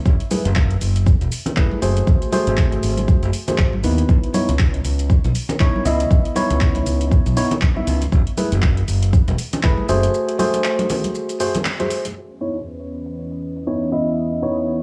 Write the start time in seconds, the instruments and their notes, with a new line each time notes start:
0.06 fingered electric bass F#1, kick, shaker
0.20 closed hi-hat
0.31 tine electric piano A3 E4 G#4 B4, open hi-hat, high conga, shaker
0.45 fingered electric bass F#1, closed hi-hat, shaker
0.55 kick, clap, shaker
0.71 closed hi-hat
0.81 fingered electric bass F#1, open hi-hat, shaker
0.96 closed hi-hat, shaker
1.06 kick, shaker
1.21 fingered electric bass E1, closed hi-hat, shaker
1.32 open hi-hat, shaker
1.46 closed hi-hat, low conga, shaker
1.56 fingered electric bass F#1, tine electric piano A3 E4 G#4 B4, kick, clap, shaker
1.71 high conga
1.82 fingered electric bass F#1, tine electric piano A3 F#4 G#4 C5, open hi-hat, shaker
1.97 closed hi-hat, shaker
2.07 fingered electric bass G#1, kick, shaker
2.22 closed hi-hat, shaker
2.32 tine electric piano A3 F#4 G#4 C5, open hi-hat, high conga, shaker
2.47 fingered electric bass G#1, closed hi-hat, shaker
2.57 kick, clap, shaker
2.72 closed hi-hat
2.83 fingered electric bass G#1, open hi-hat, shaker
2.97 closed hi-hat, high conga, shaker
3.08 kick, shaker
3.23 fingered electric bass F#1, closed hi-hat, shaker
3.33 open hi-hat, shaker
3.48 tine electric piano A3 F#4 G#4 C5, closed hi-hat, low conga, shaker
3.58 fingered electric bass G#1, kick, clap, shaker
3.73 high conga
3.84 fingered electric bass D#2, tine electric piano B3 D#4 E4 B4, open hi-hat, shaker
3.98 closed hi-hat, shaker
4.09 fingered electric bass C#2, kick, shaker
4.24 closed hi-hat
4.34 tine electric piano B3 D#4 E4 C#5, open hi-hat, high conga, shaker
4.49 fingered electric bass C#2, closed hi-hat, shaker
4.59 kick, clap, shaker
4.74 closed hi-hat
4.85 fingered electric bass C#2, open hi-hat, shaker
4.99 closed hi-hat, shaker
5.10 kick, shaker
5.24 fingered electric bass B1, closed hi-hat, muted conga, shaker
5.35 open hi-hat, shaker
5.49 closed hi-hat, low conga, shaker
5.60 fingered electric bass C#2, tine electric piano B3 D#4 E4 C#5, kick, clap, shaker
5.76 high conga
5.85 fingered electric bass C#2, tine electric piano B3 E4 D#5 E5, open hi-hat, shaker
6.00 closed hi-hat, shaker
6.11 fingered electric bass C#2, kick, shaker
6.25 closed hi-hat
6.36 tine electric piano B3 D#4 E4 C#5, open hi-hat, high conga, shaker
6.50 fingered electric bass C#2, closed hi-hat, muted conga, shaker
6.61 kick, clap, shaker
6.75 closed hi-hat, muted conga
6.86 fingered electric bass C#2, open hi-hat, shaker
7.01 closed hi-hat, shaker
7.11 kick, shaker
7.26 fingered electric bass B1, closed hi-hat, shaker
7.37 tine electric piano B3 D#4 E4 C#5, open hi-hat, shaker
7.51 closed hi-hat, low conga, shaker
7.61 fingered electric bass C#2, kick, clap, shaker
7.76 tine electric piano B3 D#4 E4 E5, high conga
7.87 fingered electric bass C#2, open hi-hat, shaker
8.01 closed hi-hat, muted conga, shaker
8.12 fingered electric bass F#1, kick, shaker
8.27 closed hi-hat
8.37 tine electric piano A3 E4 G#4 B4, open hi-hat, high conga, shaker
8.52 fingered electric bass F#1, closed hi-hat, shaker
8.62 kick, clap, shaker
8.77 closed hi-hat
8.88 fingered electric bass F#1, open hi-hat, shaker
9.03 closed hi-hat, shaker
9.13 kick, shaker
9.28 fingered electric bass E1, closed hi-hat, muted conga, shaker
9.38 open hi-hat, shaker
9.53 closed hi-hat, low conga, shaker
9.63 fingered electric bass F#1, tine electric piano A3 E4 G#4 B4, kick, clap, shaker
9.78 high conga
9.89 fingered electric bass F#1, tine electric piano A3 F#4 G#4 C5, open hi-hat, shaker
10.03 closed hi-hat, shaker
10.14 shaker
10.29 closed hi-hat
10.39 tine electric piano A3 F#4 G#4 C5, open hi-hat, high conga, shaker
10.54 closed hi-hat, muted conga, shaker
10.64 clap, shaker
10.79 closed hi-hat, muted conga
10.90 open hi-hat, low conga, shaker
11.04 closed hi-hat, high conga, shaker
11.15 shaker
11.29 closed hi-hat, shaker
11.40 tine electric piano A3 F#4 G#4 C5, open hi-hat, shaker
11.55 closed hi-hat, high conga, low conga, shaker
11.65 clap, shaker
11.80 tine electric piano A3 F#4 G#4 C5, closed hi-hat, high conga
11.91 open hi-hat, shaker
12.05 closed hi-hat, muted conga, shaker
12.16 analog synth pad E3 C#4 B4 D#6, shaker
12.30 closed hi-hat
12.41 tine electric piano B3 D#4 E4 C#5, shaker
12.56 closed hi-hat, shaker
12.67 shaker
12.81 closed hi-hat, shaker
12.92 shaker
13.06 closed hi-hat, shaker
13.17 shaker
13.31 closed hi-hat
13.42 shaker
13.56 closed hi-hat, shaker
13.67 tine electric piano B3 D#4 E4 C#5, shaker
13.92 tine electric piano B3 E4 D#5 E5, shaker
14.07 closed hi-hat, shaker
14.18 analog synth pad C#5, shaker
14.32 closed hi-hat
14.42 tine electric piano B3 D#4 E4 C#5, shaker
14.57 closed hi-hat, shaker
14.68 shaker